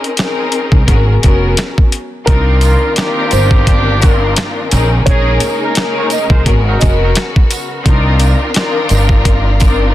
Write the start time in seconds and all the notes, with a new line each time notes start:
Already playing: C4 C#4 D#4 G#4 A#4
0.04 closed hi-hat
0.17 C4 C#4 D#4 G#4 A#4, snare, closed hi-hat
0.52 closed hi-hat
0.72 C2, kick
0.87 G#1 B3 C#4 F#4 G#4 A#4, kick, closed hi-hat
1.23 F1 B3 C#4 F#4 G#4 A#4, kick, closed hi-hat
1.57 snare, closed hi-hat
1.78 kick
1.92 closed hi-hat
2.26 C2 D#3 A#3 C4 D4 D#4 F4 A#4 D5, kick, closed hi-hat
2.61 A#3 F4, closed hi-hat, tambourine
2.96 C4 D4 D#4 F4 G4 A#4, snare, closed hi-hat
3.31 G1 C5, closed hi-hat, tambourine
3.51 kick
3.67 D4 G4, kick, closed hi-hat
4.00 C4 D4 D#4 F4 A#4, kick, closed hi-hat, tambourine
4.36 snare, closed hi-hat
4.70 A#1 C#3 G#3 A#3 C4 C#4 D#4 G#4 A#4, closed hi-hat, tambourine
5.06 A#1 A#3 C#4 D#4 G#4 A#4 C#5, kick, closed hi-hat
5.40 closed hi-hat, tambourine
5.63 D#4 A#4
5.75 A#3 C#4 D#4 G#4 A#4, snare, closed hi-hat
5.96 G#3 F4 C#5
6.10 D#5, closed hi-hat, tambourine
6.30 C2 G#3 F4 C5, kick
6.45 G#1 B3 C#4 F#4 G#4 A#4, kick, closed hi-hat
6.67 F#3 D#4 A#4
6.80 F1 B3 C#4 F#4 G#4 A#4 D#5, kick, closed hi-hat, tambourine
7.01 F#3 D#4 A#4
7.15 snare, closed hi-hat
7.36 kick
7.51 closed hi-hat, tambourine
7.85 C2 D#3 C4 D4 D#4 F4 A#4 D5, kick, closed hi-hat
8.20 closed hi-hat, tambourine
8.54 C4 D4 D#4 F4 A#4, snare, closed hi-hat
8.89 G1, closed hi-hat, tambourine
9.09 kick
9.25 kick, closed hi-hat
9.59 C4 D4 D#4 F4 A#4, kick, closed hi-hat, tambourine